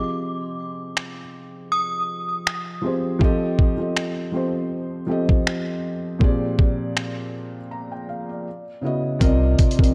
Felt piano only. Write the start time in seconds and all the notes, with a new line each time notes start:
Already playing: F3 C4 G4 G#4 D#5
2.82 F3 C4 G4 G#4
2.86 C5
3.19 F3 C4 G4 A4
3.24 D#5
3.77 F3 C4 G4 A4
3.82 D#5
4.32 F3 C4 G4 A4
4.36 C5
5.07 F3 C4 G4 A4
5.11 D#5
6.19 A#2 F3 C4 G4 G#4
6.24 D5
7.71 A#5
7.92 G5
8.09 F5
8.29 D5
8.81 C#3 B3 E4 F#4
8.86 D#5
9.19 C3 C4 F4 A#4 D5
9.24 D#5
9.77 C3 C4 F4 A#4 D5
9.82 D#5